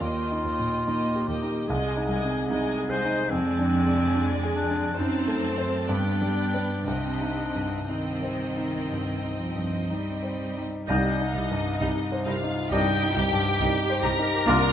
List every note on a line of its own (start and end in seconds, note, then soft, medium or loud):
0.00 1.65 D#2 soft
0.00 0.09 D#2 medium
0.00 0.43 A#3 soft
0.00 1.29 F4 medium
0.00 0.45 D#5 soft
0.00 0.44 G5 soft
0.31 0.76 D#4 soft
0.44 0.53 D#2 soft
0.44 0.85 A#3 soft
0.44 0.86 D#5 soft
0.44 0.86 G5 soft
0.59 1.04 A#2 soft
0.86 0.95 D#2 medium
0.86 1.27 A#3 soft
0.86 1.31 D#4 soft
0.86 1.27 D#5 soft
0.86 1.27 G5 soft
1.15 1.59 G4 soft
1.27 1.36 D#2 soft
1.27 1.68 A#3 soft
1.27 1.70 G4 medium
1.27 1.68 D#5 soft
1.27 1.68 G5 soft
1.42 1.69 D#4 soft
1.68 1.77 C2 medium
1.68 3.28 C2 medium
1.68 2.09 G#3 medium
1.68 2.91 G#4 medium
1.68 2.08 D#5 medium
1.68 2.07 G#5 medium
1.97 2.40 D#4 soft
2.08 2.16 C2 medium
2.08 2.49 G#3 soft
2.08 2.48 D#5 soft
2.08 2.48 G#5 soft
2.24 2.67 C3 soft
2.49 2.57 C2 medium
2.49 2.90 G#3 medium
2.49 2.94 D#4 medium
2.49 2.89 D#5 soft
2.49 2.89 G#5 medium
2.78 3.21 G#4 medium
2.90 2.98 C2 medium
2.90 3.30 G#3 soft
2.90 3.32 C5 medium
2.90 3.31 D#5 soft
2.90 3.29 G#5 soft
3.05 3.32 D#4 medium
3.30 4.93 F2 medium
3.30 4.94 F2 medium
3.30 4.94 G#3 medium
3.30 4.38 C4 medium
3.30 4.94 D5 medium
3.30 4.93 G#5 medium
3.59 4.03 D4 medium
3.86 4.31 C3 soft
4.15 4.59 D4 medium
4.43 4.87 G#4 medium
4.55 4.99 D4 medium
4.70 4.98 D4 medium
4.97 5.88 F#2 medium
4.97 5.86 F#2 medium
4.97 5.88 C4 medium
4.97 5.58 D#4 medium
4.97 5.88 C5 medium
4.97 5.86 A5 medium
5.27 5.76 A3 medium
5.57 5.85 C4 soft
5.57 5.86 C5 medium
5.87 6.86 G2 medium
5.87 6.84 G2 medium
5.87 6.87 B3 medium
5.87 6.83 D4 medium
5.87 6.87 D5 medium
5.87 6.85 G5 medium
6.22 6.74 G3 soft
6.54 6.84 D4 soft
6.54 6.84 B4 soft
6.86 8.86 C2 soft
6.86 7.77 C3 soft
6.86 7.86 C4 soft
6.86 7.90 D4 medium
6.86 7.87 D#5 soft
6.86 7.86 G5 soft
7.21 7.74 D#4 soft
7.55 8.09 G2 soft
7.87 9.35 D#3 soft
7.87 10.63 C4 soft
7.87 10.40 C4 soft
7.87 8.43 D#4 soft
7.87 10.63 D#5 soft
7.87 10.63 G5 soft
8.22 8.76 C5 soft
8.57 9.10 D#4 soft
8.91 9.44 G2 soft
9.24 9.76 D#4 soft
9.39 9.89 F3 soft
9.56 10.09 G2 soft
9.89 10.88 G3 soft
9.89 10.44 D#4 soft
10.23 10.76 C5 soft
10.57 10.89 D#4 soft
10.88 10.96 C2 medium
10.88 11.08 C2 medium
10.88 12.68 C2 medium
10.88 10.96 G3 soft
10.88 11.23 G3 soft
10.88 11.24 G3 medium
10.88 10.96 D#4 soft
10.88 11.24 D#4 soft
10.88 11.24 D#4 medium
10.88 12.24 D#4 medium
10.88 11.23 D#5 medium
10.88 12.23 D#5 medium
10.88 11.31 G6 soft
11.21 11.70 D#4 soft
11.34 11.42 C2 medium
11.34 11.53 C2 medium
11.34 11.42 G3 soft
11.34 11.42 D#4 soft
11.51 12.00 G2 soft
11.80 11.89 C2 medium
11.80 11.99 C2 medium
11.80 11.88 G3 medium
11.80 11.88 D#4 soft
11.80 12.30 D#4 medium
12.12 12.60 C5 soft
12.26 12.34 C2 medium
12.26 12.45 C2 medium
12.26 12.34 G3 medium
12.26 12.34 D#4 medium
12.26 12.72 F4 medium
12.26 12.71 F5 medium
12.43 12.90 D#4 medium
12.71 12.79 C2 medium
12.71 12.89 C2 medium
12.71 13.20 G2 medium
12.71 13.05 G3 medium
12.71 12.79 G3 soft
12.71 13.05 G3 medium
12.71 13.05 D#4 medium
12.71 12.79 D#4 soft
12.71 13.05 D#4 medium
12.71 13.13 D#4 medium
12.71 14.04 G4 medium
12.71 13.05 D#5 medium
12.71 14.01 G5 medium
12.71 13.13 G6 medium
13.02 13.49 D#4 soft
13.16 13.34 C2 medium
13.16 13.25 C2 medium
13.16 13.24 G3 soft
13.16 13.24 D#4 soft
13.16 14.47 G4 medium
13.33 13.79 G2 medium
13.60 13.68 C2 medium
13.60 13.78 C2 medium
13.60 13.68 G3 medium
13.60 13.68 D#4 soft
13.60 14.08 D#4 medium
13.90 14.36 C5 medium
14.02 14.21 C2 medium
14.02 14.11 C2 medium
14.02 14.11 G3 medium
14.02 14.10 D#4 medium
14.02 14.73 A#4 medium
14.02 14.73 A#5 medium
14.19 14.47 D#4 medium
14.45 14.64 C2 medium
14.45 14.55 C2 medium
14.45 14.73 C2 medium
14.45 14.73 A#3 medium
14.45 14.54 A#3 medium
14.45 14.73 A#3 medium
14.45 14.73 D4 medium
14.45 14.54 D4 medium
14.45 14.73 F4 medium
14.45 14.73 D5 medium
14.45 14.73 F6 medium